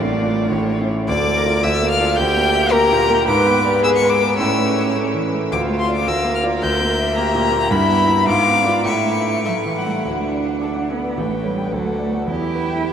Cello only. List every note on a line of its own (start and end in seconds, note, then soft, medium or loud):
0.00 0.78 A3 medium
1.10 1.38 A4 loud
1.36 1.64 A#4 medium
1.63 2.18 A4 medium
2.16 2.69 G4 loud
2.70 3.25 G4 loud
3.27 3.81 B4 loud
3.83 4.38 G#4 medium
4.38 5.22 C#4 medium
5.53 6.10 F4 medium
6.08 7.17 A#4 medium
7.18 7.71 G4 medium
7.71 8.26 E4 loud
8.28 8.56 F4 medium
8.57 8.65 D4 medium
8.88 9.45 E4 medium
9.47 9.55 F#3 medium
9.78 10.06 G3 soft
10.07 10.93 D4 medium
10.91 11.21 B3 medium
11.20 11.47 A3 medium
11.46 11.73 G3 medium
11.73 12.01 F#3 medium
12.02 12.30 A3 medium
12.30 12.93 E4 loud